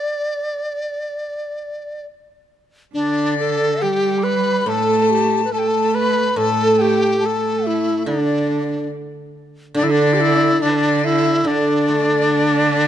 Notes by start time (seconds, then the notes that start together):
Already playing: D5
2.94 D3 D4 D5
3.40 A4
3.82 G3 G4 G5
4.18 D6
4.23 B4 B5
4.66 A2 A3 A4 A5
5.02 A4
5.11 G4
5.44 B4
5.52 A3 A4 A5
5.58 G5
5.67 A5
5.95 B4 B5
6.31 B4
6.36 A2 A3 A4 A5
6.78 G4 G5
7.19 A3 A5
7.26 A4
7.64 E4 E5
8.06 D3 D4 D5
9.74 D3 D4 D5
9.83 E4
9.90 D4 D5
10.14 G4
10.21 E4
10.61 D3 D4 D5
10.69 B4
10.75 D5
11.04 E4 E5
11.40 E5
11.44 D3 D4 D5
11.88 A3